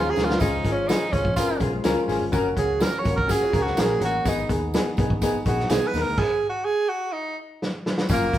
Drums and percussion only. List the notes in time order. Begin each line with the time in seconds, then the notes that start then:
0.16 snare, tambourine
0.30 snare
0.40 kick, closed hi-hat, tambourine
0.64 kick, closed hi-hat, tambourine
0.89 snare, closed hi-hat, tambourine
1.13 kick, closed hi-hat, tambourine
1.25 kick
1.36 kick, closed hi-hat, tambourine
1.60 kick, closed hi-hat, tambourine
1.84 snare, closed hi-hat, tambourine
2.09 snare, open hi-hat, tambourine
2.33 kick, closed hi-hat, tambourine
2.57 kick, closed hi-hat, tambourine
2.80 snare, closed hi-hat, tambourine
3.05 kick, closed hi-hat, tambourine
3.18 kick
3.29 kick, closed hi-hat, tambourine
3.53 kick, closed hi-hat, tambourine
3.66 snare
3.77 snare, closed hi-hat, tambourine
4.01 closed hi-hat, tambourine
4.25 kick, closed hi-hat, tambourine
4.49 kick, closed hi-hat, tambourine
4.74 snare, closed hi-hat, tambourine
4.97 kick, closed hi-hat, tambourine
5.10 kick
5.22 kick, closed hi-hat, tambourine
5.46 kick, closed hi-hat, tambourine
5.59 snare
5.69 snare, closed hi-hat, tambourine
5.94 snare, open hi-hat, tambourine
6.17 kick, crash
7.62 snare
7.86 snare
7.98 snare
8.09 kick, closed hi-hat, tambourine
8.33 kick, closed hi-hat, tambourine